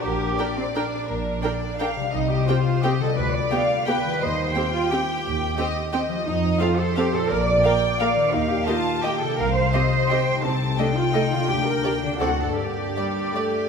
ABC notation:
X:1
M:3/4
L:1/8
Q:1/4=171
K:Gm
V:1 name="Violin section"
z2 g2 g2 | z2 g2 g2 | z2 g2 g2 | z2 g2 g2 |
z2 g2 g2 | z2 g2 g2 | z2 f2 f2 | z2 f2 f2 |
z2 e2 e2 | z2 e2 e2 | z2 e2 e2 | z2 d2 d2 |
z2 d2 d2 |]
V:2 name="Violin section"
B2 d4 | B2 d2 f2 | e2 c2 e2 | d2 f2 g2 |
e2 g4- | g2 e2 e2- | e2 c4 | d2 g2 f2- |
f2 a2 g2 | f2 e2 g2 | a2 g4- | g4 ^f2 |
d6 |]
V:3 name="Cello section"
G3 C D2- | D4- D z | E G F2 G A | =B d3 B2 |
c3 F G2- | G4- G z | E2 F A G A | B d4- d |
E G F2 G A | B c4- c | C2 D F E F | G B2 D ^F A |
G6 |]
V:4 name="Viola section"
z2 [DB]2 [DB]2 | z2 [DB]2 [DB]2 | z2 [CG]2 [CG]2 | z2 [=B,G]2 [B,G]2 |
z2 [CG]2 [CG]2 | z2 [CG]2 [CG]2 | z2 [CA]2 [CA]2 | z2 [B,B]2 [B,B]2 |
z2 [B,G]2 [B,G]2 | z2 [CG]2 [CG]2 | z2 [A,A]2 [A,A]2 | z2 [B,G]2 [CA]2 |
z2 G,2 A,2 |]
V:5 name="Harp"
[B,,B,DG]6- | [B,,B,DG]6 | [C,G,CG]6 | [D,G,F=B]6 |
[E,G,Gc]6- | [E,G,Gc]6 | [F,A,Fc]6 | [B,,B,FB]6 |
[E,B,EG]6 | [C,CEG]6 | [C,A,EA]6 | [D,B,DG]4 [D,CDA]2 |
[G,,B,DB]6 |]
V:6 name="Double bass section" clef=bass
B,,,2 z4 | B,,,2 z4 | C,,2 z4 | D,,2 z4 |
E,,2 z4 | E,,2 z4 | F,,2 z4 | B,,,2 z4 |
E,,2 z4 | C,,2 z4 | C,,2 z4 | D,,2 z2 D,,2 |
G,,2 z4 |]